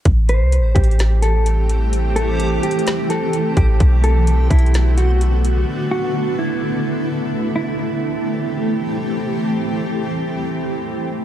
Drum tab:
HH |x--x--x--xxxx--x--x--x--|x--x--x--xxxx--x--x--x--|x--x--x--xxxx--x--x--x--|------------------------|
SD |------------o-----------|------------o-----------|------------o-----------|------------------------|
BD |o--------o--------------|---------------------o--|o--------o--------------|------------------------|

HH |------------------------|------------------------|
SD |------------------------|------------------------|
BD |------------------------|------------------------|